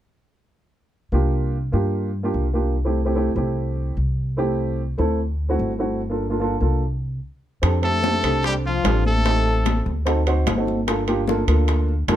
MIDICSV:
0, 0, Header, 1, 6, 480
1, 0, Start_track
1, 0, Tempo, 406229
1, 1326, Time_signature, 4, 2, 24, 8
1, 14372, End_track
2, 0, Start_track
2, 0, Title_t, "Trumpet"
2, 0, Program_c, 0, 56
2, 9264, Note_on_c, 0, 69, 106
2, 9930, Note_off_c, 0, 69, 0
2, 9990, Note_on_c, 0, 67, 91
2, 10094, Note_off_c, 0, 67, 0
2, 10234, Note_on_c, 0, 65, 84
2, 10669, Note_off_c, 0, 65, 0
2, 10711, Note_on_c, 0, 69, 88
2, 11612, Note_off_c, 0, 69, 0
2, 14372, End_track
3, 0, Start_track
3, 0, Title_t, "Grand piano"
3, 0, Program_c, 1, 0
3, 1326, Note_on_c, 1, 58, 80
3, 1334, Note_on_c, 1, 62, 71
3, 1342, Note_on_c, 1, 65, 72
3, 1346, Note_on_c, 1, 67, 91
3, 1832, Note_off_c, 1, 58, 0
3, 1835, Note_off_c, 1, 62, 0
3, 1839, Note_off_c, 1, 65, 0
3, 1841, Note_off_c, 1, 67, 0
3, 2035, Note_on_c, 1, 58, 70
3, 2043, Note_on_c, 1, 62, 67
3, 2048, Note_on_c, 1, 65, 75
3, 2055, Note_on_c, 1, 67, 84
3, 2462, Note_off_c, 1, 58, 0
3, 2466, Note_off_c, 1, 62, 0
3, 2469, Note_off_c, 1, 65, 0
3, 2472, Note_off_c, 1, 67, 0
3, 2638, Note_on_c, 1, 58, 70
3, 2645, Note_on_c, 1, 62, 66
3, 2650, Note_on_c, 1, 65, 71
3, 2659, Note_on_c, 1, 67, 79
3, 2896, Note_off_c, 1, 58, 0
3, 2900, Note_off_c, 1, 62, 0
3, 2902, Note_off_c, 1, 65, 0
3, 2906, Note_off_c, 1, 67, 0
3, 2995, Note_on_c, 1, 58, 69
3, 3004, Note_on_c, 1, 62, 66
3, 3010, Note_on_c, 1, 65, 61
3, 3015, Note_on_c, 1, 67, 76
3, 3243, Note_off_c, 1, 58, 0
3, 3247, Note_off_c, 1, 62, 0
3, 3250, Note_off_c, 1, 65, 0
3, 3253, Note_off_c, 1, 67, 0
3, 3363, Note_on_c, 1, 57, 66
3, 3368, Note_on_c, 1, 60, 57
3, 3371, Note_on_c, 1, 64, 63
3, 3383, Note_on_c, 1, 67, 71
3, 3535, Note_off_c, 1, 57, 0
3, 3537, Note_off_c, 1, 60, 0
3, 3539, Note_off_c, 1, 64, 0
3, 3545, Note_off_c, 1, 67, 0
3, 3598, Note_on_c, 1, 57, 67
3, 3606, Note_on_c, 1, 60, 66
3, 3614, Note_on_c, 1, 64, 62
3, 3621, Note_on_c, 1, 67, 78
3, 3688, Note_off_c, 1, 57, 0
3, 3692, Note_off_c, 1, 60, 0
3, 3697, Note_off_c, 1, 64, 0
3, 3700, Note_off_c, 1, 67, 0
3, 3721, Note_on_c, 1, 57, 82
3, 3728, Note_on_c, 1, 60, 70
3, 3736, Note_on_c, 1, 64, 72
3, 3743, Note_on_c, 1, 67, 87
3, 3894, Note_off_c, 1, 57, 0
3, 3898, Note_off_c, 1, 60, 0
3, 3902, Note_off_c, 1, 64, 0
3, 3905, Note_off_c, 1, 67, 0
3, 3965, Note_on_c, 1, 57, 68
3, 3972, Note_on_c, 1, 60, 64
3, 3976, Note_on_c, 1, 64, 63
3, 3987, Note_on_c, 1, 67, 80
3, 4641, Note_off_c, 1, 57, 0
3, 4644, Note_off_c, 1, 60, 0
3, 4647, Note_off_c, 1, 64, 0
3, 4652, Note_off_c, 1, 67, 0
3, 5163, Note_on_c, 1, 57, 80
3, 5172, Note_on_c, 1, 60, 76
3, 5174, Note_on_c, 1, 64, 74
3, 5185, Note_on_c, 1, 67, 93
3, 5672, Note_off_c, 1, 57, 0
3, 5677, Note_off_c, 1, 60, 0
3, 5678, Note_off_c, 1, 64, 0
3, 5683, Note_off_c, 1, 67, 0
3, 5881, Note_on_c, 1, 57, 80
3, 5890, Note_on_c, 1, 60, 72
3, 5897, Note_on_c, 1, 64, 73
3, 5902, Note_on_c, 1, 69, 83
3, 6127, Note_off_c, 1, 57, 0
3, 6132, Note_off_c, 1, 60, 0
3, 6135, Note_off_c, 1, 64, 0
3, 6137, Note_off_c, 1, 69, 0
3, 6483, Note_on_c, 1, 57, 67
3, 6487, Note_on_c, 1, 60, 73
3, 6494, Note_on_c, 1, 64, 69
3, 6503, Note_on_c, 1, 66, 81
3, 6740, Note_off_c, 1, 57, 0
3, 6742, Note_off_c, 1, 60, 0
3, 6746, Note_off_c, 1, 64, 0
3, 6750, Note_off_c, 1, 66, 0
3, 6836, Note_on_c, 1, 57, 68
3, 6845, Note_on_c, 1, 60, 65
3, 6851, Note_on_c, 1, 64, 63
3, 6856, Note_on_c, 1, 66, 73
3, 7085, Note_off_c, 1, 57, 0
3, 7089, Note_off_c, 1, 60, 0
3, 7092, Note_off_c, 1, 64, 0
3, 7095, Note_off_c, 1, 66, 0
3, 7203, Note_on_c, 1, 58, 67
3, 7210, Note_on_c, 1, 62, 60
3, 7219, Note_on_c, 1, 65, 64
3, 7225, Note_on_c, 1, 69, 76
3, 7376, Note_off_c, 1, 58, 0
3, 7380, Note_off_c, 1, 62, 0
3, 7384, Note_off_c, 1, 65, 0
3, 7387, Note_off_c, 1, 69, 0
3, 7440, Note_on_c, 1, 58, 69
3, 7450, Note_on_c, 1, 62, 65
3, 7456, Note_on_c, 1, 65, 69
3, 7462, Note_on_c, 1, 69, 74
3, 7531, Note_off_c, 1, 58, 0
3, 7536, Note_off_c, 1, 62, 0
3, 7539, Note_off_c, 1, 65, 0
3, 7542, Note_off_c, 1, 69, 0
3, 7561, Note_on_c, 1, 58, 74
3, 7568, Note_on_c, 1, 62, 73
3, 7576, Note_on_c, 1, 65, 71
3, 7581, Note_on_c, 1, 69, 86
3, 7735, Note_off_c, 1, 58, 0
3, 7739, Note_off_c, 1, 62, 0
3, 7743, Note_off_c, 1, 65, 0
3, 7745, Note_off_c, 1, 69, 0
3, 7804, Note_on_c, 1, 58, 69
3, 7811, Note_on_c, 1, 62, 62
3, 7820, Note_on_c, 1, 65, 63
3, 7826, Note_on_c, 1, 69, 78
3, 8049, Note_off_c, 1, 58, 0
3, 8052, Note_off_c, 1, 62, 0
3, 8057, Note_off_c, 1, 65, 0
3, 8060, Note_off_c, 1, 69, 0
3, 9000, Note_on_c, 1, 60, 73
3, 9011, Note_on_c, 1, 62, 69
3, 9014, Note_on_c, 1, 67, 65
3, 9024, Note_on_c, 1, 69, 86
3, 9174, Note_off_c, 1, 60, 0
3, 9180, Note_off_c, 1, 62, 0
3, 9181, Note_off_c, 1, 67, 0
3, 9186, Note_off_c, 1, 69, 0
3, 9240, Note_on_c, 1, 60, 71
3, 9246, Note_on_c, 1, 62, 64
3, 9253, Note_on_c, 1, 67, 63
3, 9258, Note_on_c, 1, 69, 67
3, 9414, Note_off_c, 1, 60, 0
3, 9417, Note_off_c, 1, 62, 0
3, 9421, Note_off_c, 1, 67, 0
3, 9423, Note_off_c, 1, 69, 0
3, 9481, Note_on_c, 1, 60, 66
3, 9487, Note_on_c, 1, 62, 64
3, 9494, Note_on_c, 1, 67, 62
3, 9503, Note_on_c, 1, 69, 79
3, 9654, Note_off_c, 1, 60, 0
3, 9657, Note_off_c, 1, 62, 0
3, 9661, Note_off_c, 1, 67, 0
3, 9665, Note_off_c, 1, 69, 0
3, 9724, Note_on_c, 1, 60, 68
3, 9732, Note_on_c, 1, 62, 62
3, 9737, Note_on_c, 1, 67, 62
3, 9747, Note_on_c, 1, 69, 78
3, 10232, Note_off_c, 1, 60, 0
3, 10235, Note_off_c, 1, 62, 0
3, 10238, Note_off_c, 1, 67, 0
3, 10243, Note_off_c, 1, 69, 0
3, 10441, Note_on_c, 1, 60, 70
3, 10448, Note_on_c, 1, 62, 66
3, 10456, Note_on_c, 1, 67, 65
3, 10460, Note_on_c, 1, 69, 79
3, 10910, Note_off_c, 1, 60, 0
3, 10918, Note_off_c, 1, 67, 0
3, 10926, Note_off_c, 1, 69, 0
3, 10928, Note_off_c, 1, 62, 0
3, 10928, Note_on_c, 1, 60, 73
3, 10933, Note_on_c, 1, 63, 66
3, 10936, Note_on_c, 1, 67, 66
3, 10944, Note_on_c, 1, 69, 83
3, 11696, Note_off_c, 1, 60, 0
3, 11698, Note_off_c, 1, 63, 0
3, 11700, Note_off_c, 1, 67, 0
3, 11704, Note_off_c, 1, 69, 0
3, 11880, Note_on_c, 1, 60, 86
3, 11891, Note_on_c, 1, 63, 77
3, 11893, Note_on_c, 1, 66, 72
3, 11901, Note_on_c, 1, 69, 88
3, 12052, Note_off_c, 1, 60, 0
3, 12057, Note_off_c, 1, 63, 0
3, 12058, Note_off_c, 1, 66, 0
3, 12062, Note_off_c, 1, 69, 0
3, 12128, Note_on_c, 1, 60, 81
3, 12131, Note_on_c, 1, 63, 75
3, 12140, Note_on_c, 1, 66, 78
3, 12147, Note_on_c, 1, 72, 87
3, 12380, Note_off_c, 1, 60, 0
3, 12381, Note_off_c, 1, 63, 0
3, 12386, Note_off_c, 1, 66, 0
3, 12389, Note_off_c, 1, 72, 0
3, 12486, Note_on_c, 1, 60, 73
3, 12490, Note_on_c, 1, 63, 74
3, 12497, Note_on_c, 1, 66, 62
3, 12504, Note_on_c, 1, 69, 78
3, 12738, Note_off_c, 1, 60, 0
3, 12740, Note_off_c, 1, 63, 0
3, 12744, Note_off_c, 1, 66, 0
3, 12747, Note_off_c, 1, 69, 0
3, 12846, Note_on_c, 1, 58, 74
3, 12851, Note_on_c, 1, 62, 70
3, 12858, Note_on_c, 1, 65, 69
3, 12869, Note_on_c, 1, 69, 87
3, 13014, Note_off_c, 1, 58, 0
3, 13016, Note_off_c, 1, 62, 0
3, 13020, Note_off_c, 1, 65, 0
3, 13025, Note_off_c, 1, 69, 0
3, 13085, Note_on_c, 1, 58, 81
3, 13089, Note_on_c, 1, 62, 74
3, 13098, Note_on_c, 1, 65, 80
3, 13103, Note_on_c, 1, 67, 95
3, 13253, Note_off_c, 1, 58, 0
3, 13255, Note_off_c, 1, 62, 0
3, 13259, Note_off_c, 1, 65, 0
3, 13262, Note_off_c, 1, 67, 0
3, 13326, Note_on_c, 1, 58, 87
3, 13332, Note_on_c, 1, 62, 74
3, 13337, Note_on_c, 1, 65, 78
3, 13343, Note_on_c, 1, 69, 95
3, 13493, Note_off_c, 1, 58, 0
3, 13496, Note_off_c, 1, 62, 0
3, 13498, Note_off_c, 1, 65, 0
3, 13502, Note_off_c, 1, 69, 0
3, 13564, Note_on_c, 1, 58, 85
3, 13570, Note_on_c, 1, 62, 78
3, 13577, Note_on_c, 1, 65, 81
3, 13585, Note_on_c, 1, 69, 90
3, 14067, Note_off_c, 1, 58, 0
3, 14070, Note_off_c, 1, 62, 0
3, 14073, Note_off_c, 1, 65, 0
3, 14077, Note_off_c, 1, 69, 0
3, 14279, Note_on_c, 1, 58, 89
3, 14284, Note_on_c, 1, 62, 76
3, 14294, Note_on_c, 1, 65, 79
3, 14299, Note_on_c, 1, 69, 97
3, 14372, Note_off_c, 1, 58, 0
3, 14372, Note_off_c, 1, 62, 0
3, 14372, Note_off_c, 1, 65, 0
3, 14372, Note_off_c, 1, 69, 0
3, 14372, End_track
4, 0, Start_track
4, 0, Title_t, "Trombone"
4, 0, Program_c, 2, 57
4, 9248, Note_on_c, 2, 57, 75
4, 9922, Note_off_c, 2, 57, 0
4, 10000, Note_on_c, 2, 55, 68
4, 10101, Note_off_c, 2, 55, 0
4, 10233, Note_on_c, 2, 53, 69
4, 10668, Note_off_c, 2, 53, 0
4, 10705, Note_on_c, 2, 57, 73
4, 11609, Note_off_c, 2, 57, 0
4, 14372, End_track
5, 0, Start_track
5, 0, Title_t, "Upright bass"
5, 0, Program_c, 3, 32
5, 1324, Note_on_c, 3, 36, 74
5, 1999, Note_off_c, 3, 36, 0
5, 2046, Note_on_c, 3, 43, 70
5, 2721, Note_off_c, 3, 43, 0
5, 2767, Note_on_c, 3, 36, 76
5, 3899, Note_off_c, 3, 36, 0
5, 3967, Note_on_c, 3, 36, 74
5, 4643, Note_off_c, 3, 36, 0
5, 4689, Note_on_c, 3, 36, 76
5, 5820, Note_off_c, 3, 36, 0
5, 5890, Note_on_c, 3, 38, 74
5, 6564, Note_off_c, 3, 38, 0
5, 6610, Note_on_c, 3, 31, 82
5, 7740, Note_off_c, 3, 31, 0
5, 7805, Note_on_c, 3, 36, 72
5, 8482, Note_off_c, 3, 36, 0
5, 9011, Note_on_c, 3, 41, 82
5, 9684, Note_off_c, 3, 41, 0
5, 9728, Note_on_c, 3, 36, 81
5, 10402, Note_off_c, 3, 36, 0
5, 10448, Note_on_c, 3, 33, 80
5, 11576, Note_off_c, 3, 33, 0
5, 11652, Note_on_c, 3, 38, 84
5, 12322, Note_off_c, 3, 38, 0
5, 12369, Note_on_c, 3, 31, 84
5, 13494, Note_off_c, 3, 31, 0
5, 13559, Note_on_c, 3, 38, 77
5, 14232, Note_off_c, 3, 38, 0
5, 14276, Note_on_c, 3, 41, 80
5, 14372, Note_off_c, 3, 41, 0
5, 14372, End_track
6, 0, Start_track
6, 0, Title_t, "Drums"
6, 9015, Note_on_c, 9, 60, 63
6, 9015, Note_on_c, 9, 65, 86
6, 9020, Note_on_c, 9, 63, 32
6, 9133, Note_off_c, 9, 65, 0
6, 9134, Note_off_c, 9, 60, 0
6, 9138, Note_off_c, 9, 63, 0
6, 9253, Note_on_c, 9, 65, 57
6, 9257, Note_on_c, 9, 63, 29
6, 9371, Note_off_c, 9, 65, 0
6, 9375, Note_off_c, 9, 63, 0
6, 9496, Note_on_c, 9, 63, 81
6, 9498, Note_on_c, 9, 66, 50
6, 9500, Note_on_c, 9, 60, 54
6, 9614, Note_off_c, 9, 63, 0
6, 9616, Note_off_c, 9, 66, 0
6, 9618, Note_off_c, 9, 60, 0
6, 9736, Note_on_c, 9, 65, 81
6, 9738, Note_on_c, 9, 63, 30
6, 9854, Note_off_c, 9, 65, 0
6, 9856, Note_off_c, 9, 63, 0
6, 9974, Note_on_c, 9, 63, 31
6, 9975, Note_on_c, 9, 65, 64
6, 9976, Note_on_c, 9, 60, 56
6, 10092, Note_off_c, 9, 63, 0
6, 10094, Note_off_c, 9, 60, 0
6, 10094, Note_off_c, 9, 65, 0
6, 10224, Note_on_c, 9, 63, 30
6, 10342, Note_off_c, 9, 63, 0
6, 10455, Note_on_c, 9, 65, 82
6, 10455, Note_on_c, 9, 66, 76
6, 10456, Note_on_c, 9, 60, 61
6, 10456, Note_on_c, 9, 61, 78
6, 10574, Note_off_c, 9, 65, 0
6, 10574, Note_off_c, 9, 66, 0
6, 10575, Note_off_c, 9, 60, 0
6, 10575, Note_off_c, 9, 61, 0
6, 10697, Note_on_c, 9, 63, 64
6, 10815, Note_off_c, 9, 63, 0
6, 10937, Note_on_c, 9, 65, 60
6, 10938, Note_on_c, 9, 60, 60
6, 10942, Note_on_c, 9, 63, 31
6, 11055, Note_off_c, 9, 65, 0
6, 11056, Note_off_c, 9, 60, 0
6, 11060, Note_off_c, 9, 63, 0
6, 11183, Note_on_c, 9, 63, 31
6, 11301, Note_off_c, 9, 63, 0
6, 11411, Note_on_c, 9, 60, 52
6, 11415, Note_on_c, 9, 65, 80
6, 11415, Note_on_c, 9, 66, 50
6, 11421, Note_on_c, 9, 63, 85
6, 11529, Note_off_c, 9, 60, 0
6, 11533, Note_off_c, 9, 65, 0
6, 11533, Note_off_c, 9, 66, 0
6, 11539, Note_off_c, 9, 63, 0
6, 11651, Note_on_c, 9, 60, 31
6, 11664, Note_on_c, 9, 63, 30
6, 11769, Note_off_c, 9, 60, 0
6, 11782, Note_off_c, 9, 63, 0
6, 11894, Note_on_c, 9, 60, 59
6, 11896, Note_on_c, 9, 65, 64
6, 11902, Note_on_c, 9, 63, 34
6, 12012, Note_off_c, 9, 60, 0
6, 12015, Note_off_c, 9, 65, 0
6, 12020, Note_off_c, 9, 63, 0
6, 12132, Note_on_c, 9, 65, 65
6, 12135, Note_on_c, 9, 60, 31
6, 12140, Note_on_c, 9, 63, 33
6, 12251, Note_off_c, 9, 65, 0
6, 12254, Note_off_c, 9, 60, 0
6, 12258, Note_off_c, 9, 63, 0
6, 12369, Note_on_c, 9, 65, 81
6, 12369, Note_on_c, 9, 66, 75
6, 12375, Note_on_c, 9, 63, 75
6, 12378, Note_on_c, 9, 60, 58
6, 12378, Note_on_c, 9, 61, 76
6, 12487, Note_off_c, 9, 65, 0
6, 12487, Note_off_c, 9, 66, 0
6, 12493, Note_off_c, 9, 63, 0
6, 12496, Note_off_c, 9, 60, 0
6, 12496, Note_off_c, 9, 61, 0
6, 12610, Note_on_c, 9, 63, 62
6, 12622, Note_on_c, 9, 60, 30
6, 12728, Note_off_c, 9, 63, 0
6, 12740, Note_off_c, 9, 60, 0
6, 12853, Note_on_c, 9, 63, 30
6, 12854, Note_on_c, 9, 65, 81
6, 12856, Note_on_c, 9, 60, 68
6, 12971, Note_off_c, 9, 63, 0
6, 12972, Note_off_c, 9, 65, 0
6, 12974, Note_off_c, 9, 60, 0
6, 13089, Note_on_c, 9, 65, 62
6, 13095, Note_on_c, 9, 63, 32
6, 13207, Note_off_c, 9, 65, 0
6, 13213, Note_off_c, 9, 63, 0
6, 13322, Note_on_c, 9, 63, 84
6, 13332, Note_on_c, 9, 66, 50
6, 13341, Note_on_c, 9, 60, 57
6, 13440, Note_off_c, 9, 63, 0
6, 13451, Note_off_c, 9, 66, 0
6, 13459, Note_off_c, 9, 60, 0
6, 13565, Note_on_c, 9, 65, 82
6, 13567, Note_on_c, 9, 63, 31
6, 13683, Note_off_c, 9, 65, 0
6, 13685, Note_off_c, 9, 63, 0
6, 13801, Note_on_c, 9, 65, 69
6, 13803, Note_on_c, 9, 63, 32
6, 13809, Note_on_c, 9, 60, 57
6, 13919, Note_off_c, 9, 65, 0
6, 13922, Note_off_c, 9, 63, 0
6, 13928, Note_off_c, 9, 60, 0
6, 14043, Note_on_c, 9, 63, 30
6, 14161, Note_off_c, 9, 63, 0
6, 14278, Note_on_c, 9, 65, 82
6, 14278, Note_on_c, 9, 66, 77
6, 14282, Note_on_c, 9, 60, 62
6, 14282, Note_on_c, 9, 61, 70
6, 14372, Note_off_c, 9, 60, 0
6, 14372, Note_off_c, 9, 61, 0
6, 14372, Note_off_c, 9, 65, 0
6, 14372, Note_off_c, 9, 66, 0
6, 14372, End_track
0, 0, End_of_file